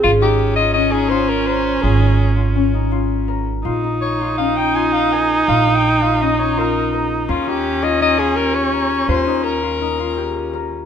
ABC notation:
X:1
M:5/4
L:1/16
Q:1/4=166
K:Bbdor
V:1 name="Soprano saxophone"
F2 G4 e2 e2 A2 c2 B2 c4 | A6 z12 z2 | z4 d4 f2 g2 a2 f2 a4 | f3 g3 f2 e2 d2 B4 z4 |
F2 G4 e2 e2 A2 B2 d6 | c4 B12- B2 z2 |]
V:2 name="Harp"
F2 E4 F2 D2 E2 F4 B4 | F2 E4 F2 D2 E2 F4 B4 | F2 E4 F2 D2 E2 F4 B4 | F2 E4 F2 D2 E2 F4 B4 |
F2 E4 F2 E2 F2 G4 B4 | F2 E4 F2 E2 F2 G4 B4 |]
V:3 name="Viola"
D16- D4- | D16- D2 z2 | E16- E4- | E16- E4 |
D16- D4- | D16- D2 z2 |]
V:4 name="Upright bass" clef=bass
A,,,16- A,,,4 | A,,,16- A,,,4 | B,,,16- B,,,4 | B,,,16- B,,,4 |
E,,16- E,,4 | E,,16- E,,4 |]